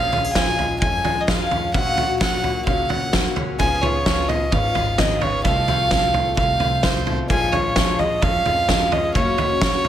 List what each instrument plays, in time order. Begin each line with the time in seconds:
Already playing: upright bass A#1, twelve-string acoustic guitar A#2 F3 G#3 C#4 F4, fiddle F5
0.12 twelve-string acoustic guitar A#2 F3 G#3 C#4 F4, floor tom
0.24 steel-string acoustic guitar G#4
0.33 twelve-string acoustic guitar F3 G#3 C#4, fiddle G#5, kick, snare, floor tom
0.37 twelve-string acoustic guitar F4
0.58 twelve-string acoustic guitar G#3 C#4 F4, floor tom
0.80 upright bass F2, steel-string acoustic guitar F2 C#4, fiddle G#5, kick, floor tom
1.05 upright bass F2, twelve-string acoustic guitar G#3 C#4 F4, floor tom
1.20 fiddle D#5
1.27 twelve-string acoustic guitar F3 G#3 C#4 F4, fiddle F5, kick, snare, floor tom
1.50 twelve-string acoustic guitar G#3 C#4 F4, floor tom
1.74 upright bass A#1, twelve-string acoustic guitar A#2 F#3 A#3 C#4 F#4, fiddle F#5, kick, floor tom
1.97 twelve-string acoustic guitar A#2 F#3 A#3 C#4 F#4, floor tom
2.19 twelve-string acoustic guitar F#3 A#3 C#4 F#4, fiddle F#5, kick, snare, floor tom
2.43 twelve-string acoustic guitar A#3 C#4 F#4, floor tom
2.66 upright bass C#2, steel-string acoustic guitar A#2 C#4, fiddle F5, kick, floor tom
2.89 upright bass C#2, twelve-string acoustic guitar A#3 C#4 F#4, fiddle F#5, floor tom
3.13 upright bass D#2, twelve-string acoustic guitar F#3 A#3 C#4 F#4, kick, snare, floor tom
3.36 upright bass C#2, twelve-string acoustic guitar A#3 C#4 F#4, floor tom
3.59 upright bass C#2, twelve-string acoustic guitar C#3 G#3 B3 F4 G#4, steel-string acoustic guitar F3 C#4, fiddle G#5, kick, floor tom
3.81 twelve-string acoustic guitar C#3 G#3 B3 F4 G#4, fiddle C#5, floor tom
4.06 steel-string acoustic guitar F3, twelve-string acoustic guitar G#3 B3 F4 G#4, kick, snare, floor tom
4.28 twelve-string acoustic guitar B3 F4 G#4, fiddle D#5, floor tom
4.52 upright bass G#1, steel-string acoustic guitar G#2 C#4, fiddle F5, kick, floor tom
4.75 upright bass G#1, twelve-string acoustic guitar B3 F4 G#4, floor tom
4.98 steel-string acoustic guitar D#3, twelve-string acoustic guitar G#3 B3 F4 G#4, fiddle D#5, kick, snare, floor tom
5.21 steel-string acoustic guitar C#3, twelve-string acoustic guitar B3 F4 G#4, fiddle C#5, floor tom
5.44 upright bass C2, twelve-string acoustic guitar C3 F3 A3 C4 F4, fiddle F5, kick, floor tom
5.48 steel-string acoustic guitar A4
5.68 twelve-string acoustic guitar C3 F3 A3 C4 F4, steel-string acoustic guitar A4, floor tom
5.91 twelve-string acoustic guitar F3 A3 C4 F4, kick, snare, floor tom
6.14 twelve-string acoustic guitar A3 C4 F4, floor tom
6.37 upright bass C2, steel-string acoustic guitar C3 C4, fiddle F5, kick, floor tom
6.59 upright bass C2, twelve-string acoustic guitar A3 C4 F4, floor tom
6.83 steel-string acoustic guitar C3, twelve-string acoustic guitar F3 A3 C4 F4, fiddle C5, kick, snare, floor tom
7.06 steel-string acoustic guitar B2, twelve-string acoustic guitar A3 C4 F4, floor tom
7.29 upright bass A#1, twelve-string acoustic guitar A#2 F3 G#3 C#4 F4, steel-string acoustic guitar G#4, fiddle G#5, kick, floor tom
7.52 twelve-string acoustic guitar A#2 F3 G#3 C#4 F4, steel-string acoustic guitar G#4, fiddle C#5, floor tom
7.76 twelve-string acoustic guitar F3 G#3 C#4 F4, kick, snare, floor tom
7.99 twelve-string acoustic guitar G#3 C#4 F4, fiddle D#5, floor tom
8.21 upright bass F2, steel-string acoustic guitar F2 C#4, fiddle F5, kick, floor tom
8.46 upright bass F2, twelve-string acoustic guitar G#3 C#4 F4, floor tom
8.69 twelve-string acoustic guitar F3 G#3 C#4 F4, kick, snare, floor tom
8.91 twelve-string acoustic guitar G#3 C#4 F4, fiddle D#5, floor tom
9.14 upright bass F#1, twelve-string acoustic guitar F#2 C#3 F#3 A#3 C#4 F#4, fiddle C#5, kick, floor tom
9.38 twelve-string acoustic guitar F#2 C#3 F#3 A#3 C#4 F#4, floor tom
9.61 twelve-string acoustic guitar F#3 A#3 C#4 F#4, kick, snare, floor tom
9.85 steel-string acoustic guitar A#3, floor tom